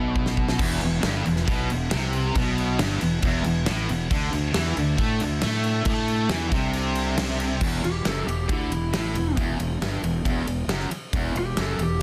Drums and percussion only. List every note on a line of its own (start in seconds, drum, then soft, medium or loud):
0.16 kick medium
0.26 snare medium
0.37 kick medium
0.48 snare medium
0.59 kick loud
0.59 crash loud
0.59 crash medium
0.81 crash medium
1.03 snare loud
1.03 crash medium
1.25 crash medium
1.36 snare soft
1.48 kick loud
1.48 crash medium
1.70 crash medium
1.91 snare loud
1.91 crash medium
2.13 crash medium
2.35 kick loud
2.35 crash medium
2.58 crash medium
2.79 snare loud
2.79 crash medium
3.01 crash medium
3.22 kick loud
3.22 crash medium
3.44 crash medium
3.66 snare loud
3.66 crash medium
3.89 crash medium
4.11 kick loud
4.11 crash medium
4.33 crash medium
4.54 snare loud
4.54 crash medium
4.77 crash medium
4.98 kick loud
4.98 crash medium
5.20 crash medium
5.42 snare loud
5.42 crash medium
5.64 crash medium
5.85 kick loud
5.85 crash medium
6.08 crash medium
6.29 snare loud
6.29 crash medium
6.52 kick loud
6.52 crash medium
6.73 crash medium
6.95 crash medium
7.18 snare loud
7.18 crash medium
7.40 crash medium
7.61 kick loud
7.61 crash loud
7.84 ride medium
8.05 snare loud
8.05 ride medium
8.28 ride medium
8.49 kick loud
8.49 ride medium
8.72 ride medium
8.94 snare loud
8.94 ride loud
9.15 ride medium
9.37 kick loud
9.37 ride loud
9.60 ride medium
9.82 snare loud
9.82 ride loud
10.04 ride medium
10.25 kick loud
10.25 ride medium
10.47 ride medium
10.69 snare loud
10.69 ride medium
10.80 snare soft
10.91 ride medium
11.13 kick loud
11.13 ride loud
11.36 ride medium
11.57 snare loud
11.57 ride medium
11.79 ride medium